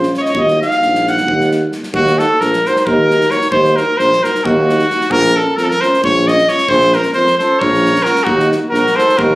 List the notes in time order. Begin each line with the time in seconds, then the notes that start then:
Already playing: C#4 F4 C5
0.03 snare
0.14 C#5, snare
0.20 D#5
0.25 C#5, snare
0.33 D#2 D#4 F#4, kick
0.38 D#5
0.48 snare
0.62 F5, snare
0.71 snare
0.81 A#1, snare
0.95 snare
1.07 F#5, snare
1.17 snare
1.28 D#2, kick
1.40 snare
1.51 snare
1.72 snare
1.83 snare
1.93 D#2 F#4, kick
2.07 snare
2.19 D#4 F#4 A4, snare
2.40 A#1 A#4, snare
2.53 snare
2.65 D#4 F#4 C5, snare
2.76 C5, snare
2.86 D#2 A#4, kick
3.10 D#4 F#4, snare
3.21 snare
3.31 D#4 F#4 C#5, snare
3.41 snare
3.50 D#2 C5, kick
3.65 snare
3.76 D#4 F#4 A#4, snare
3.98 A#1 C5, snare
4.13 snare
4.23 D#4 F#4 A#4, snare
4.35 snare
4.45 D#2 F#4, kick
4.67 D#4 F#4, snare
4.79 snare
4.89 D#4 F#4, snare
5.01 snare
5.10 A#1 A#4, kick
5.24 snare
5.35 C#4 F4 A4
5.56 F2 A#4, snare
5.64 A4
5.69 A#4, snare
5.81 C#4 F4 C5, snare
5.94 snare
6.02 A#1 C#5, kick
6.26 C#4 F4 D#5, snare
6.38 snare
6.47 C#4 F4 C#5, snare
6.58 snare
6.69 A#1 C5, kick
6.81 snare
6.93 C#4 F4 A#4, snare
7.03 snare
7.13 F2 C5, snare
7.27 snare
7.38 C#4 F4 A4 C5, snare
7.59 A#1 A#4 C#5, kick
7.74 snare
7.85 C#4 F4, snare
7.96 snare
8.03 C#4 F4 F#4 A#4, snare
8.15 snare
8.24 D#2 D#4 F#4, kick
8.39 snare
8.50 D#4 F#4, snare
8.69 A#1 F#4 A#4
8.74 snare
8.87 snare
8.96 D#4 F#4 A4 C5, snare
9.09 snare
9.16 D#2 F#4 A#4, kick